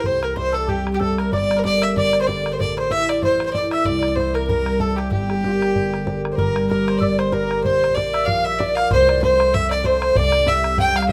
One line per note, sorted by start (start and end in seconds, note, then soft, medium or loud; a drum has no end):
0.00 0.11 E3 medium
0.00 1.70 A3 medium
0.00 1.63 G4 soft
0.00 1.64 A4 soft
0.00 0.38 C5 medium
0.00 bodhran medium
0.05 1.30 C2 medium
0.05 3.07 C4 medium
0.05 0.22 C5 medium
0.05 0.25 C5 loud
0.14 bodhran soft
0.23 0.35 A#4 medium
0.23 0.39 A#4 medium
0.23 0.37 A#4 medium
0.23 bodhran medium
0.36 0.52 C5 medium
0.36 0.55 C5 medium
0.36 0.55 C5 loud
0.36 1.01 D5 soft
0.36 1.01 E5 medium
0.36 bodhran medium
0.52 0.67 A4 medium
0.52 0.70 A4 medium
0.68 1.31 G3 medium
0.68 0.94 G4 medium
0.68 0.92 G4 medium
0.68 0.93 G4 medium
0.68 bodhran medium
0.87 bodhran medium
0.93 1.00 G4 medium
0.93 1.01 G4 medium
0.93 1.02 G4 medium
0.99 1.18 A4 medium
0.99 1.20 A4 medium
0.99 1.12 A4 medium
0.99 2.92 C5 soft
0.99 2.87 D5 soft
0.99 2.74 E5 soft
0.99 bodhran medium
1.10 1.20 A4 medium
1.10 bodhran soft
1.18 1.32 A#4 medium
1.18 1.35 A#4 medium
1.18 1.33 A#4 medium
1.18 bodhran medium
1.32 2.57 G1 medium
1.32 2.01 G3 medium
1.32 1.60 D5 loud
1.32 1.56 D5 medium
1.32 1.65 D5 medium
1.32 bodhran medium
1.42 bodhran soft
1.51 bodhran medium
1.56 1.63 A#4 medium
1.56 1.64 A#4 medium
1.64 2.26 G4 soft
1.64 2.27 A4 soft
1.64 2.27 A#4 medium
1.64 1.80 D5 medium
1.64 1.85 D5 loud
1.64 1.82 D5 medium
1.64 bodhran medium
1.81 1.95 E5 medium
1.81 1.99 E5 medium
1.81 1.97 E5 loud
1.81 bodhran medium
1.96 2.65 D3 medium
1.96 2.22 D5 medium
1.96 2.20 D5 loud
1.96 2.20 D5 medium
1.96 bodhran medium
2.13 bodhran medium
2.20 2.27 C5 medium
2.20 2.28 C5 medium
2.20 2.30 C5 medium
2.27 4.62 G4 soft
2.27 2.90 A4 soft
2.27 2.65 A#4 medium
2.27 2.55 D5 loud
2.27 2.50 D5 medium
2.27 2.53 D5 medium
2.27 bodhran medium
2.38 bodhran soft
2.46 bodhran medium
2.52 2.59 C5 medium
2.52 2.60 C5 medium
2.52 2.63 C5 medium
2.59 3.84 A1 medium
2.59 5.50 A3 medium
2.59 2.77 D5 medium
2.59 2.76 D5 loud
2.59 2.78 D5 medium
2.59 bodhran medium
2.69 bodhran soft
2.77 2.90 C5 medium
2.77 2.93 C5 loud
2.77 bodhran medium
2.89 3.54 E4 soft
2.89 3.54 A4 soft
2.89 3.54 C5 medium
2.89 3.07 E5 medium
2.89 3.11 E5 loud
2.89 3.11 E5 medium
2.89 bodhran medium
3.09 3.23 D5 loud
3.09 3.24 D5 medium
3.09 3.23 D5 medium
3.09 bodhran medium
3.22 3.91 E3 medium
3.22 3.47 C5 medium
3.22 3.45 C5 loud
3.22 3.48 C5 medium
3.22 bodhran medium
3.40 bodhran medium
3.45 3.52 C5 medium
3.45 3.56 C5 medium
3.45 3.55 C5 medium
3.53 6.15 E4 medium
3.53 5.50 A4 soft
3.53 4.17 C5 medium
3.53 3.70 D5 medium
3.53 3.74 D5 medium
3.53 bodhran medium
3.57 3.72 D5 medium
3.63 bodhran soft
3.71 3.85 E5 medium
3.71 3.87 E5 medium
3.71 3.86 E5 medium
3.71 bodhran medium
3.85 5.10 C2 medium
3.85 6.86 C4 medium
3.85 4.17 D5 loud
3.85 3.96 D5 medium
3.85 4.16 D5 medium
3.85 3.90 E5 medium
3.85 bodhran medium
3.94 bodhran soft
3.99 4.07 D5 medium
3.99 bodhran medium
4.08 4.17 D5 medium
4.15 4.36 C5 loud
4.15 4.32 C5 medium
4.15 4.79 C5 soft
4.15 4.79 D5 soft
4.15 4.80 E5 medium
4.15 bodhran medium
4.20 4.34 C5 medium
4.33 4.46 A#4 medium
4.33 4.48 A#4 medium
4.33 bodhran medium
4.47 5.12 G3 medium
4.47 4.81 A#4 medium
4.47 4.82 A#4 medium
4.47 4.79 A#4 medium
4.47 bodhran medium
4.66 bodhran medium
4.79 4.97 A4 medium
4.79 6.77 C5 medium
4.79 5.44 D5 soft
4.79 6.52 E5 soft
4.79 bodhran medium
4.90 bodhran soft
4.96 5.10 G4 medium
4.96 5.11 G4 medium
4.96 5.09 G4 medium
4.96 bodhran medium
5.11 6.36 G1 medium
5.11 5.80 G3 medium
5.11 6.20 G4 medium
5.11 6.20 G4 loud
5.11 5.31 G4 medium
5.11 bodhran medium
5.30 5.36 A4 medium
5.30 bodhran medium
5.35 5.48 G4 medium
5.43 5.53 F4 medium
5.43 6.06 G4 soft
5.43 6.07 A#4 soft
5.43 6.07 D5 soft
5.43 bodhran medium
5.52 6.09 G4 medium
5.62 bodhran medium
5.75 6.44 D3 medium
5.75 bodhran medium
5.94 bodhran medium
6.06 6.71 G4 soft
6.06 6.72 A#4 soft
6.06 6.72 D5 medium
6.06 bodhran medium
6.17 bodhran soft
6.25 bodhran medium
6.32 6.69 A#4 medium
6.32 6.37 C5 medium
6.38 7.62 G1 medium
6.38 7.07 G3 medium
6.38 6.68 A#4 medium
6.38 bodhran medium
6.56 bodhran medium
6.63 bodhran soft
6.70 7.33 G4 soft
6.70 6.99 A#4 medium
6.70 6.86 A#4 medium
6.70 7.02 A#4 medium
6.70 7.33 A#4 soft
6.70 7.34 D5 medium
6.70 bodhran medium
6.88 6.98 C5 medium
6.88 bodhran medium
6.98 7.20 D5 medium
6.98 7.21 D5 medium
6.98 7.03 E5 medium
6.98 bodhran medium
7.02 7.70 D3 medium
7.02 7.19 D5 medium
7.19 7.35 C5 medium
7.19 7.32 C5 medium
7.19 7.35 C5 medium
7.19 bodhran medium
7.32 9.68 G4 medium
7.32 7.62 A#4 medium
7.32 7.63 A#4 medium
7.32 7.64 A#4 medium
7.32 7.94 A#4 soft
7.32 7.99 D5 medium
7.32 bodhran medium
7.51 bodhran medium
7.63 8.88 A#1 medium
7.63 9.29 A#3 medium
7.63 7.96 C5 loud
7.63 7.99 C5 medium
7.63 7.94 C5 medium
7.63 bodhran medium
7.84 bodhran medium
7.90 bodhran soft
7.94 8.60 A#4 soft
7.94 8.60 C5 medium
7.94 8.27 D5 loud
7.94 8.13 D5 medium
7.94 8.28 D5 medium
7.94 bodhran medium
8.00 8.61 D5 medium
8.13 8.25 E5 medium
8.13 bodhran medium
8.25 8.96 F3 medium
8.25 8.46 F5 loud
8.25 8.45 F5 medium
8.25 8.48 F5 medium
8.25 bodhran medium
8.44 8.60 E5 medium
8.44 8.58 E5 medium
8.44 8.60 E5 medium
8.59 9.29 A#4 medium
8.59 9.23 C5 medium
8.59 8.77 D5 medium
8.59 8.75 D5 medium
8.59 8.79 D5 medium
8.59 10.46 D5 medium
8.59 bodhran medium
8.75 8.90 F5 loud
8.75 8.90 F5 medium
8.75 8.91 F5 medium
8.75 bodhran medium
8.91 10.15 C2 medium
8.91 9.53 C4 medium
8.91 9.20 C5 medium
8.91 9.10 C5 medium
8.91 9.21 C5 loud
8.91 bodhran medium
9.09 9.25 D5 medium
9.09 bodhran medium
9.16 bodhran soft
9.22 9.84 A4 medium
9.22 9.56 C5 loud
9.22 9.56 C5 medium
9.22 9.52 C5 medium
9.22 9.85 E5 medium
9.22 bodhran medium
9.40 bodhran medium
9.53 10.17 C4 medium
9.53 9.70 E5 medium
9.53 9.70 E5 loud
9.53 9.74 E5 loud
9.53 bodhran medium
9.70 9.87 D5 loud
9.70 9.84 D5 medium
9.70 9.86 D5 medium
9.70 bodhran medium
9.84 11.12 A4 medium
9.84 10.14 C5 medium
9.84 10.18 C5 loud
9.84 10.49 C5 medium
9.84 10.19 C5 medium
9.84 10.49 E5 medium
9.84 bodhran medium
10.02 bodhran medium
10.15 11.12 C2 medium
10.15 11.12 C4 medium
10.15 10.49 D5 loud
10.15 10.47 D5 medium
10.15 bodhran medium
10.32 bodhran medium
10.40 bodhran soft
10.47 11.11 G4 medium
10.47 11.12 C5 soft
10.47 10.79 E5 loud
10.47 10.82 E5 medium
10.47 10.78 E5 medium
10.47 11.12 E5 medium
10.47 bodhran medium
10.64 bodhran medium
10.78 11.12 G3 medium
10.78 10.98 G5 loud
10.78 10.96 G5 medium
10.78 10.95 G5 loud
10.78 bodhran medium
10.95 11.12 F5 medium
10.95 11.08 F5 medium
10.95 11.10 F5 medium
10.95 bodhran medium
11.02 bodhran medium
11.08 11.12 E5 medium
11.08 bodhran medium